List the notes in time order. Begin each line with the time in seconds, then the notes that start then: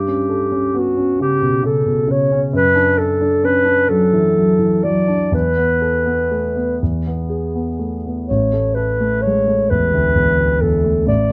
Already playing: G2 G4
0.08 C#4
0.30 A4
0.52 C#4
0.74 B3 F#4
0.97 C#4
1.20 C#3 G4
1.42 B2
1.63 C#3 A4
1.86 B2
2.07 C#3 C#5
2.32 C#4
2.53 F#2 B4
2.75 D4
2.98 A4
3.21 D4
3.44 C#4 B4
3.65 D4
3.89 F#3 A4
4.13 E3
4.37 F#3
4.59 E3
4.84 F#3 D5
5.08 D4
5.31 E2 B4
5.57 B3
5.82 A4
6.06 B3
6.31 A3
6.56 B3
6.82 E2
7.07 B3
7.30 G#4
7.55 B3
7.79 A3
8.06 B3
8.27 A1 C#5
8.53 A3
8.75 A4 B4
9.01 A3
9.22 G#3 C#5
9.48 A3
9.70 E2 B4
9.93 D2
10.15 E2
10.37 D2
10.61 E2 A4
10.84 A3
11.06 A1 D5